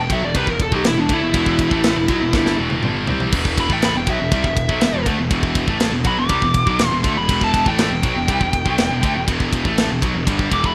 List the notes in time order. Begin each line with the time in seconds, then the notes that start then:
0.00 G5
0.10 B1 B2 F#3 E5, kick, ride
0.23 E1 E2 B2 D5
0.34 C2 C3 G3 B4, kick, ride
0.47 E1 E2 B2 A#4, kick
0.60 A4, kick, ride
0.72 B1 B2 F#3 G4, kick
0.84 E1 E2 B2 E4, snare, ride
0.97 E1 E2 B2 D4
1.09 D2 D3 A3, kick, ride
1.13 E4
1.21 E1 E2 B2
1.33 E1 E2 B2 E3, kick, ride
1.46 kick
1.59 kick, ride
1.71 A1 A2 E3 A3, kick
1.84 snare, ride
1.96 E1 E2 B2
2.08 B1 B2 F#3, kick, ride
2.21 E1 E2 B2
2.33 G1 G2 D3 G3, kick, snare
2.46 snare
2.58 E1 E2 B2 E3
2.70 high tom
2.83 G1 G2 D3 G3, mid tom
3.07 C2 C3 G3 C4, floor tom
3.20 floor tom
3.32 E1 E2 B2 E3, kick, crash
3.45 kick
3.58 B5, kick, ride
3.70 A1 A2 E3 A3 G5, kick
3.82 B5, snare, ride
3.95 E1 E2 B2 G5
4.07 B1 B2 F#3 E5, kick, ride
4.19 E1 E2 B2
4.32 C2 C3 G3, kick, ride
4.44 E1 E2 B2, kick
4.57 kick, ride
4.68 B1 B2 F#3, kick
4.81 E1 E2 B2, snare, ride
4.93 E1 E2 B2
5.06 D2 D3 A3, kick, ride
5.18 E1 E2 B2
5.30 E1 E2 B2 E3, kick, ride
5.43 kick
5.55 kick, ride
5.67 A1 A2 E3 A3, kick
5.80 snare, ride
5.92 E1 E2 B2
6.04 B1 B2 F#3 B5, kick, ride
6.17 E1 E2 B2 D6
6.29 C2 C3 G3, kick, ride
6.42 E1 E2 B2, kick
6.54 kick, ride
6.66 B1 B2 F#3, kick
6.79 E1 E2 B2, snare, ride
6.88 E1 E2 B2 C6
7.03 D2 D3 A3, kick, ride
7.16 E1 E2 B2 B5
7.28 E1 E2 B2 E3, kick, ride
7.41 A5, kick
7.54 kick, ride
7.65 A1 A2 E3 A3 G5, kick
7.79 G5, snare, ride
7.90 E1 E2 B2
8.03 B1 B2 F#3, kick, ride
8.15 E1 E2 B2
8.28 C2 C3 G3, kick, ride
8.40 E1 E2 B2, kick
8.53 kick, ride
8.65 B1 B2 F#3, kick
8.78 E1 E2 B2, snare, ride
8.91 E1 E2 B2
9.02 D2 D3 A3, kick, ride
9.15 E1 E2 B2
9.28 E1 E2 B2 E3, kick, ride
9.40 kick
9.53 kick, ride
9.64 A1 A2 E3 A3, kick
9.78 snare, ride
9.90 E1 E2 B2
10.02 B1 B2 F#3, kick, ride
10.14 E1 E2 B2
10.27 G1 G2 D3 G3, kick, ride
10.39 kick
10.52 E1 E2 B2 E3 D6, kick, ride
10.64 B5, kick